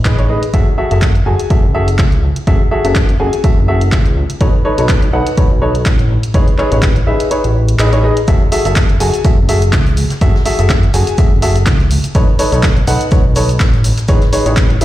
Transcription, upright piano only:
0.05 D#4 G#4 B4 D#5
0.19 D#4 G#4 B4 C#5
0.29 D#4 G#4 B4 D#5
0.54 F#4 G#4 A4 E5
0.78 F#4 G#4 A4 E5
0.91 F#4 G#4 A4 E5
1.26 F#4 G#4 A4 G#5
1.50 F#4 G#4 A4 E5
1.75 F#4 G#4 A4 E5
2.47 F#4 G#4 A4 E5
2.71 F#4 G#4 A4 E5
2.85 F#4 G#4 A4 E5
3.20 F#4 G#4 A4 G#5
3.44 F#4 G#4 A4 E5
3.68 F#4 G#4 A4 E5
4.41 D#4 A4 B4 C#5
4.65 D#4 A4 B4 C#5
4.78 D#4 A4 B4 C#5
5.13 D#4 A4 B4 F#5
5.37 D#4 A4 B4 C#5
5.62 D#4 A4 B4 C#5
6.34 D#4 G#4 B4 C#5
6.58 D#4 G#4 B4 C#5
6.72 D#4 G#4 B4 C#5
7.07 D#4 G#4 B4 E5
7.31 D#4 G#4 B4 C#5
7.79 D#4 G#4 B4 D#5
7.93 D#4 G#4 B4 C#5
8.04 D#4 G#4 B4 D#5
8.28 F#4 G#4 A4 E5
8.52 F#4 G#4 A4 E5
8.65 F#4 G#4 A4 E5
9.00 F#4 G#4 A4 G#5
9.25 F#4 G#4 A4 E5
9.49 F#4 G#4 A4 E5
10.21 F#4 G#4 A4 E5
10.46 F#4 G#4 A4 E5
10.59 F#4 G#4 A4 E5
10.94 F#4 G#4 A4 G#5
11.18 F#4 G#4 A4 E5
11.42 F#4 G#4 A4 E5
12.15 D#4 A4 B4 C#5
12.39 D#4 A4 B4 C#5
12.52 D#4 A4 B4 C#5
12.88 D#4 A4 B4 F#5
13.12 D#4 A4 B4 C#5
13.36 D#4 A4 B4 C#5
14.08 D#4 G#4 B4 C#5
14.33 D#4 G#4 B4 C#5
14.46 D#4 G#4 B4 C#5
14.81 D#4 G#4 B4 E5

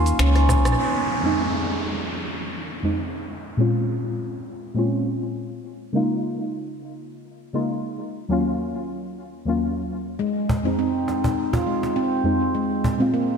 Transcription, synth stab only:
1.22 F2 G#3 C4 D#4
2.83 F2 G#3 C4 D#4
3.57 A#2 G#3 C4 C#4 F4
4.74 A#2 G#3 C4 C#4
4.79 F4
5.93 C#3 G#3 A#3 D#4 F4
7.53 C#3 G#3 A#3 D#4 F4
8.28 D#2 F#3 A#3 C#4 F4
9.45 D#2 F#3 A#3 C#4
9.49 F4
10.63 F2 G#3 C4
10.67 D#4
12.24 F2 G#3 C4 D#4
12.98 A#2 G#3 C4
13.02 F4

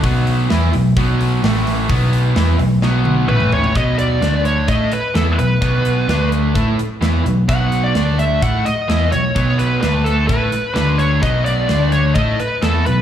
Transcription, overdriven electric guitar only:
0.03 B2 F#3 B3
0.50 E3 B3 E4
0.73 B2 F#3
0.97 B2 F#3 B3
1.43 A2 E3 A3
1.89 B2 F#3 B3
2.36 E3 B3 E4
2.59 B2 F#3
2.82 B2 F#3 B3
3.28 A2 E3 A3
3.75 B2 F#3 B3
4.22 D3 A3 D4
4.68 A3 E4 A4
4.92 muted overdriven electric guitar stroke
5.14 E3 B3 E4
5.39 B2 F#3
5.61 B2 F#3 B3
6.08 D3 A3 D4
6.54 A3 E4 A4
6.78 muted overdriven electric guitar stroke
7.01 E3 B3 E4
7.25 B2 F#3
7.48 B2 F#3 B3
7.95 D3 A3 D4
8.42 A3 E4 A4
8.66 muted overdriven electric guitar stroke
8.88 E3 B3 E4
9.12 B2 F#3
9.35 B2 F#3 B3
9.82 D3 A3 D4
10.29 A3 E4 A4
10.52 muted overdriven electric guitar stroke
10.74 D3 A3 D4
11.22 B2 F#3 B3
11.68 D3 A3 D4
12.15 A3 E4 A4
12.39 muted overdriven electric guitar stroke
12.62 E3 B3 E4
12.86 B2 F#3

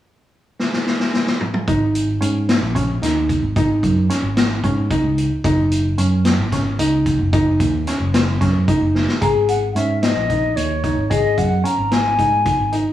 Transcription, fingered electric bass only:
1.68 G#1
2.21 G#2
2.61 A#1
3.02 D#2
3.42 G#1
3.83 F#2
4.22 G#1
4.64 G#2
5.04 C#2
5.44 F#1
5.98 F#2
6.38 G#1
6.79 C#2
7.19 F#1
7.60 D#2
8.00 F#1
8.41 F#2
8.80 F#1
9.22 G#1
9.75 G#2
10.15 A#1
10.56 D#2
10.97 G#1
11.38 F#2
11.78 G#1
12.18 G#2
12.58 G#1

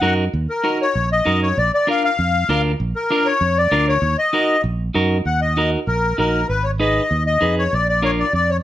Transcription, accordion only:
Already playing: F#5
0.50 A#4
0.82 C#5
1.12 D#5
1.43 C#5
1.58 D5
1.74 D5
1.90 F5
2.04 F5
2.96 A#4
3.26 C#5
3.58 D5
3.88 C#5
4.18 D#5
5.26 F#5
5.41 D#5
5.87 A#4
6.19 A#4
6.49 B4
6.64 C#5
6.80 D#5
7.26 D#5
7.59 C#5
7.74 D5
7.89 D5
8.05 C#5
8.20 D5
8.34 D5
8.50 C#5

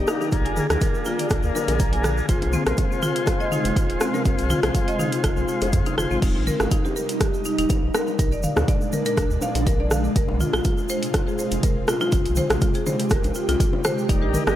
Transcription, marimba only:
0.08 D#4
0.21 D#4
0.32 A#5
0.45 G#5
0.57 G#4
0.82 A#4
1.06 F4
1.19 D5
1.55 A#4
1.68 A#4
1.80 A#5
1.93 G#5
2.04 G#4
2.29 F4
2.53 C4
2.67 A#4
3.03 F4
3.16 F4
3.27 F5
3.40 D#5
3.52 D#4
3.76 F4
4.01 C4
4.14 A#4
4.50 F4
4.63 F4
4.75 F5
4.88 D#5
4.99 D#4
5.24 F4
5.49 F4
5.62 C5
5.86 D#4
5.98 F4
6.11 C4
6.23 D#4
6.47 A#4
6.72 D#4
6.85 G4
6.96 A#4
7.21 G4
7.45 D#4
7.58 D#4
7.70 D#4
7.95 A#4
8.19 A#4
8.32 D5
8.44 F5
8.68 D5
8.93 A#4
9.06 A#4
9.18 A#4
9.42 F5
9.67 A#4
9.80 D5
9.91 F5
10.16 A#4
10.41 F4
10.54 F4
10.65 F4
10.90 C5
11.14 F4
11.27 G#4
11.39 C5
11.64 A#4
11.88 F4
12.01 F4
12.13 F4
12.37 C5
12.62 F4
12.75 G#4
12.86 C5
13.11 A#4
13.36 F4
13.49 F4
13.60 F4
13.85 C5
14.09 D#4
14.22 G4
14.34 A#4

